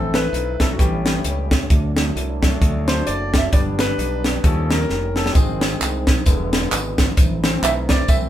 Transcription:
Already playing: fingered electric bass A1, grand piano E3 A3 C4 A4, french horn section E3 A3 C4 E4, tonewheel organ C4 E4 A4 E5
0.14 grand piano B4, snare, closed hi-hat
0.33 fingered electric bass B1, closed hi-hat
0.60 fingered electric bass C2, grand piano A4, kick, snare, closed hi-hat
0.72 grand piano F#4
0.78 fingered electric bass A1, grand piano G3 B3 C#4 G4, french horn section G3 A3 C#4, tonewheel organ A3 G4 C#5, kick, closed hi-hat
1.06 snare, closed hi-hat
1.24 fingered electric bass C#2, closed hi-hat
1.51 kick, snare, closed hi-hat
1.70 fingered electric bass D2, french horn section D3 F#3 D4, tonewheel organ D4 F#4 D5, kick, closed hi-hat
1.97 snare, closed hi-hat
2.16 fingered electric bass C2, closed hi-hat
2.42 grand piano F#3 A3 D4, kick, snare, closed hi-hat
2.61 fingered electric bass D2, kick, closed hi-hat
2.88 grand piano C5, snare, closed hi-hat
3.07 fingered electric bass F#1, grand piano D5, closed hi-hat
3.34 kick, snare, closed hi-hat
3.38 grand piano E5
3.52 fingered electric bass G1, grand piano G3 B3 D4 D5, french horn section G3 B3, tonewheel organ B3 D4 G4 D5, kick, closed hi-hat
3.79 grand piano B4, snare, closed hi-hat
3.98 fingered electric bass B1, closed hi-hat
4.24 snare, closed hi-hat
4.44 fingered electric bass D#2, french horn section D#3 A#3 C#4, grand piano F3 G3 C#4 A4, tonewheel organ A#3 D#4 C#5, kick, closed hi-hat
4.70 grand piano A#4, snare, closed hi-hat
4.89 fingered electric bass F1, snare
5.16 grand piano A4, snare
5.26 grand piano G4, snare
5.34 fingered electric bass G#1, grand piano D#3 G#3 C4 G#4, french horn section G#3 C4 D#4, tonewheel organ G#3 C4 D#4 C5, kick, closed hi-hat, tambourine
5.61 snare, closed hi-hat, tambourine
5.81 fingered electric bass C2, clap, closed hi-hat, tambourine
6.07 kick, snare, closed hi-hat, tambourine
6.26 fingered electric bass E1, grand piano D3 G#3 B3, french horn section E3 G#3 B3 D4, tonewheel organ D4 E4 B4, kick, closed hi-hat, tambourine
6.53 snare, closed hi-hat, tambourine
6.72 fingered electric bass G#1, clap, closed hi-hat, tambourine
6.98 kick, snare, closed hi-hat, tambourine
7.17 fingered electric bass A1, tonewheel organ A3 C4 C5, french horn section A3 C4 E4, kick, closed hi-hat, tambourine
7.44 grand piano E3 A3 C4, snare, closed hi-hat, tambourine
7.62 fingered electric bass B1, grand piano E5, clap, closed hi-hat, tambourine
7.89 grand piano D5, kick, snare, closed hi-hat, tambourine
8.08 fingered electric bass C2, grand piano E3 A3 C4 E5, kick, closed hi-hat, tambourine

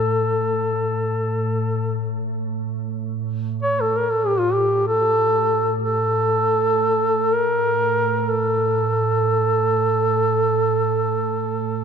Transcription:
Already playing: ambient pad A2, duduk A4
3.63 duduk C#5
3.81 duduk A4
3.97 duduk A#4
4.11 duduk A4
4.26 duduk G4
4.39 duduk F4
4.53 duduk G4
4.88 duduk A4
5.83 duduk A4
7.33 duduk A#4
8.20 duduk A#4
8.30 duduk A4
11.12 ambient pad A2

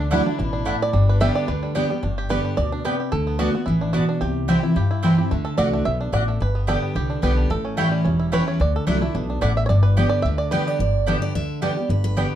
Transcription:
Already playing: upright bass D2, steel-string acoustic guitar D3, five-string banjo A3, fiddle D4
0.00 five-string banjo D4
0.11 steel-string acoustic guitar F#3 A3 D4 E4, mandolin A3 E4 D5 F#5, five-string banjo D4, fiddle E4
0.25 fiddle D4, five-string banjo D4, steel-string acoustic guitar D4 E4
0.38 upright bass A1, steel-string acoustic guitar B2, five-string banjo D4, fiddle E4
0.53 five-string banjo D4
0.65 steel-string acoustic guitar A2, mandolin A3 E4 D5 F#5, five-string banjo A3
0.82 five-string banjo D5
0.87 fiddle E4
0.93 upright bass G1, steel-string acoustic guitar G2, five-string banjo G3, fiddle D4
1.09 five-string banjo B4
1.21 steel-string acoustic guitar D3 G3 B3 G4, mandolin B3 G4 D5 G5, five-string banjo E5
1.35 five-string banjo D5
1.48 upright bass D2, steel-string acoustic guitar D3, five-string banjo B4
1.63 five-string banjo G3
1.75 steel-string acoustic guitar D3 G3 B3 G4, mandolin B3 G4 D5 G5, five-string banjo D4
1.90 five-string banjo G3, steel-string acoustic guitar B3 G4
2.03 upright bass G1, steel-string acoustic guitar G2, five-string banjo D4
2.18 five-string banjo G4
2.29 steel-string acoustic guitar D3 G3 B3 G4, mandolin B3 G4 D5 G5, five-string banjo B4
2.45 five-string banjo D4
2.57 upright bass D2, steel-string acoustic guitar B2, five-string banjo D5
2.72 five-string banjo D4
2.85 steel-string acoustic guitar C3, mandolin B3 G4 D5 G5, five-string banjo B4
3.00 five-string banjo G4
3.12 upright bass D2, steel-string acoustic guitar D3, five-string banjo A4
3.27 five-string banjo B3
3.39 steel-string acoustic guitar D3 A3 B3 F#4, mandolin B3 F#4 D5 A5, five-string banjo F#4
3.54 five-string banjo B3, steel-string acoustic guitar B3 F#4
3.66 upright bass A1, steel-string acoustic guitar E3, five-string banjo E4
3.81 five-string banjo D4
3.93 steel-string acoustic guitar B2, mandolin B3 F#4 D5 A5, five-string banjo F#4
4.09 five-string banjo D4
4.21 upright bass C2, steel-string acoustic guitar C3, five-string banjo G4
4.48 steel-string acoustic guitar E3 G3 C4 E4, mandolin C4 E4 C5 G5, five-string banjo G4
4.63 steel-string acoustic guitar C4 E4, five-string banjo E4
4.76 steel-string acoustic guitar G2, upright bass G2, five-string banjo G4
4.91 five-string banjo E4
5.03 steel-string acoustic guitar E3 G3 C4 E4, mandolin C4 E4 C5 G5, five-string banjo C4
5.18 steel-string acoustic guitar C4 E4, five-string banjo G4
5.31 upright bass D2, steel-string acoustic guitar D3, five-string banjo A3
5.45 five-string banjo A4
5.57 upright bass C2, steel-string acoustic guitar D3 A3 D4 F#4, mandolin A3 F#4 D5 F#5, five-string banjo D5
5.73 five-string banjo A3
5.85 upright bass B1, steel-string acoustic guitar B2, five-string banjo E5
6.01 five-string banjo D4
6.12 upright bass A1, steel-string acoustic guitar A2, mandolin A3 F#4 D5 F#5, five-string banjo D5
6.28 five-string banjo A3
6.40 upright bass G1, steel-string acoustic guitar G2, five-string banjo B4
6.55 five-string banjo B3
6.67 steel-string acoustic guitar D3 G3 B3 G4, mandolin B3 G4 D5 G5, five-string banjo A4
6.82 five-string banjo B3
6.95 upright bass C2, steel-string acoustic guitar D3, five-string banjo G4
7.10 five-string banjo D4
7.22 upright bass B1, steel-string acoustic guitar D3 G3 B3 G4, mandolin B3 G4 D5 G5, five-string banjo B4
7.37 five-string banjo D4
7.50 upright bass A1, steel-string acoustic guitar A2, five-string banjo A4
7.65 five-string banjo C#4
7.77 steel-string acoustic guitar E3 G3 C#4 E4, mandolin A3 E4 C#5 G5, five-string banjo E4
7.92 five-string banjo G3
8.05 upright bass E1, steel-string acoustic guitar E2, five-string banjo C#4
8.20 five-string banjo E4
8.32 steel-string acoustic guitar E3 G3 C#4 E4, mandolin A3 E4 C#5 G5, five-string banjo B4
8.48 five-string banjo C#5
8.60 upright bass D2, steel-string acoustic guitar D3, five-string banjo D5
8.76 five-string banjo A4
8.87 upright bass C2, steel-string acoustic guitar F#3 A3 D4 E4, mandolin A3 E4 D5 F#5, five-string banjo D4
9.01 five-string banjo A3, steel-string acoustic guitar D4 E4
9.15 upright bass B1, steel-string acoustic guitar B2, five-string banjo D4
9.30 five-string banjo D4
9.41 upright bass A1, steel-string acoustic guitar A2, mandolin A3 E4 D5 F#5, five-string banjo D5
9.57 five-string banjo E5
9.66 upright bass G1, steel-string acoustic guitar G2, five-string banjo C#5 D5
9.83 five-string banjo B4
9.97 steel-string acoustic guitar D3 G3 B3 G4, mandolin B3 G4 D5 G5, five-string banjo G4
10.10 five-string banjo D5
10.22 upright bass D2, steel-string acoustic guitar D3, five-string banjo E5
10.38 five-string banjo D5
10.51 steel-string acoustic guitar D3 G3 B3 G4 B4, mandolin B3 G4 D5 G5, five-string banjo B4
10.67 five-string banjo G4, steel-string acoustic guitar D5
10.79 upright bass G1, steel-string acoustic guitar G2 D5
11.07 steel-string acoustic guitar D3 G3 B3 G4 E5, five-string banjo G3 B3 D4, mandolin B3 G4 D5 G5
11.22 steel-string acoustic guitar D5
11.34 upright bass D2, steel-string acoustic guitar D3 E5
11.62 steel-string acoustic guitar D3 G3 B3 G4 D5, five-string banjo G3 B3 D4, mandolin B3 G4 D5 G5
11.77 steel-string acoustic guitar B3 G4
11.89 upright bass G1, steel-string acoustic guitar G2 B4
12.04 steel-string acoustic guitar B4
12.17 steel-string acoustic guitar D3 G3 B3 G4, five-string banjo G3 B3 D4, mandolin B3 G4 D5 G5

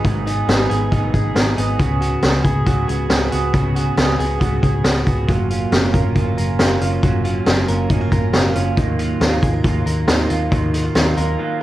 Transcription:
Already playing: clean electric guitar B3 D#4 G#4
0.04 picked electric bass G#1, clean electric guitar G#2 D#3 F#3 B3 D#4 G#4, kick, closed hi-hat
0.25 clean electric guitar F#3 B3 D#4 G#4, closed hi-hat
0.47 picked electric bass G#1, clean electric guitar F#3 B3 D#4 G#4, snare, closed hi-hat
0.69 picked electric bass G#1, clean electric guitar F#3 B3 D#4 G#4, closed hi-hat
0.91 picked electric bass G#1, clean electric guitar G#2 D#3 F#3 B3 D#4 G#4, kick, closed hi-hat
1.13 picked electric bass G#1, clean electric guitar F#3 B3 D#4 G#4, kick, closed hi-hat
1.34 picked electric bass G#1, clean electric guitar F#3 B3 D#4 G#4, snare, closed hi-hat
1.57 picked electric bass G#1, clean electric guitar F#3 B3 D#4 G#4, closed hi-hat
1.79 picked electric bass C#2, clean electric guitar C#3 F#3 B3 F#4 G#4, kick, closed hi-hat
2.00 clean electric guitar B3 F#4 G#4, closed hi-hat
2.22 picked electric bass C#2, clean electric guitar F#3 B3 F#4 G#4, snare, closed hi-hat
2.45 picked electric bass C#2, clean electric guitar B3 F#4 G#4, kick, closed hi-hat
2.66 picked electric bass C#2, clean electric guitar C#3 F#3 B3 F#4 G#4, kick, closed hi-hat
2.88 picked electric bass C#2, clean electric guitar B3 F#4 G#4, closed hi-hat
3.09 picked electric bass C#2, clean electric guitar F#3 B3 F#4 G#4, snare, closed hi-hat
3.31 picked electric bass C#2, clean electric guitar B3 F#4 G#4, closed hi-hat
3.53 picked electric bass C#2, clean electric guitar C#3 F#3 B3 F#4 G#4, kick, closed hi-hat
3.75 clean electric guitar B3 F#4 G#4, closed hi-hat
3.97 picked electric bass C#2, clean electric guitar F#3 B3 F#4 G#4, snare, closed hi-hat
4.18 picked electric bass C#2, clean electric guitar B3 F#4 G#4, closed hi-hat
4.39 picked electric bass C#2, clean electric guitar C#3 F#3 B3 F#4 G#4, kick, closed hi-hat
4.60 picked electric bass C#2, clean electric guitar B3 F#4 G#4, kick, closed hi-hat
4.83 picked electric bass C#2, clean electric guitar F#3 B3 F#4 G#4, snare, closed hi-hat
5.05 picked electric bass C#2, clean electric guitar B3 F#4 G#4, kick, closed hi-hat
5.27 picked electric bass F#1, clean electric guitar F#3 A#3 C#4 F4, kick, closed hi-hat
5.49 clean electric guitar A#3 C#4 F4, closed hi-hat
5.71 picked electric bass F#1, clean electric guitar F#3 A#3 C#4 F4, snare, closed hi-hat
5.93 picked electric bass F#1, clean electric guitar A#3 C#4 F4 A#4, kick, closed hi-hat
6.15 picked electric bass F#1, clean electric guitar F#3 A#3 C#4 F4, kick, closed hi-hat
6.36 picked electric bass F#1, clean electric guitar A#3 C#4 F4 A#4, closed hi-hat
6.58 picked electric bass F#1, clean electric guitar F#3 A#3 C#4 F4, snare, closed hi-hat
6.81 picked electric bass F#1, clean electric guitar A#3 C#4 F4, closed hi-hat
7.03 picked electric bass F#1, clean electric guitar F#3 A#3 C#4 F4, kick, closed hi-hat
7.24 clean electric guitar A#3 C#4 F4, closed hi-hat
7.45 picked electric bass F#1, clean electric guitar F#3 A#3 C#4 F4, snare, closed hi-hat
7.66 picked electric bass F#1, clean electric guitar A#3 C#4 F4 A#4, closed hi-hat
7.89 picked electric bass F#1, clean electric guitar F#3 A#3 C#4 D#4 F4, kick, closed hi-hat
8.01 clean electric guitar F4
8.10 picked electric bass F#1, clean electric guitar A#3 C#4 F4 A#4, kick, closed hi-hat
8.32 picked electric bass F#1, clean electric guitar F#3 A#3 C#4 F4, snare, closed hi-hat
8.54 picked electric bass F#1, clean electric guitar A#3 C#4 F4, closed hi-hat
8.76 picked electric bass D#2, clean electric guitar D#3 F#3 A#3 F4, kick, closed hi-hat
8.98 clean electric guitar F#3 A#3 F4, closed hi-hat
9.20 picked electric bass D#2, clean electric guitar D#3 F#3 A#3 D#4 F4, snare, closed hi-hat
9.42 picked electric bass D#2, clean electric guitar F#3 A#3 F4 G#4, kick, closed hi-hat
9.53 clean electric guitar A#4
9.64 picked electric bass D#2, clean electric guitar D#3 F#3 A#3 F4, kick, closed hi-hat
9.84 picked electric bass D#2, clean electric guitar F#3 A#3 F4 A#4, closed hi-hat
10.07 picked electric bass D#2, clean electric guitar D#3 F#3 A#3 D#4 F4, snare, closed hi-hat
10.29 picked electric bass D#2, clean electric guitar F#3 A#3 F4, closed hi-hat
10.50 picked electric bass D#2, clean electric guitar D#3 F#3 A#3 F4, kick, closed hi-hat
10.73 clean electric guitar F#3 A#3 D#4 F4, closed hi-hat
10.85 clean electric guitar F4
10.95 picked electric bass D#2, clean electric guitar D#3 F#3 A#3 D#4 F4, snare, closed hi-hat
11.17 picked electric bass D#2, clean electric guitar F#3 A#3 F4 A#4, closed hi-hat
11.39 clean electric guitar D#3 F#3 A#3 F4

